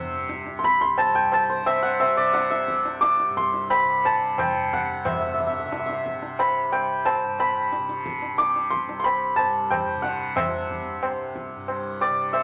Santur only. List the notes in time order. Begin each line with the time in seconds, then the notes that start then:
Already playing: C5 E5 F#5
0.59 C6
0.64 B5
0.81 C6
0.98 A5
1.15 G5
1.33 A5
1.50 C5
1.67 E5
1.83 F#5
2.00 E5
2.17 D5
2.33 F#5
2.50 E5
3.01 D6
3.37 C6
3.70 B5
4.05 A5
4.39 G5
4.73 F#5
5.06 E5
5.13 E5
5.20 E5
5.27 E5
5.34 E5
5.40 E5
5.47 E5
5.53 E5
5.59 E5
5.66 E5
5.73 E5
5.79 E5
5.86 E5
5.92 E5
6.40 B5
6.72 G5
7.05 A5
7.40 B5
8.38 D6
8.70 C6
9.00 C6
9.04 B5
9.36 A5
9.70 G5
10.02 F#5
10.36 E5
12.01 D5
12.33 E5